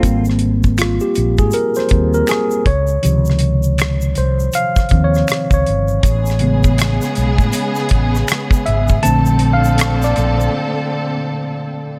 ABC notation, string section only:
X:1
M:4/4
L:1/8
Q:"Swing 16ths" 1/4=80
K:Dblyd
V:1 name="String section"
z8 | z8 | [^C,^G,=B,^G]8 | [B,,=D,C=A]8 |]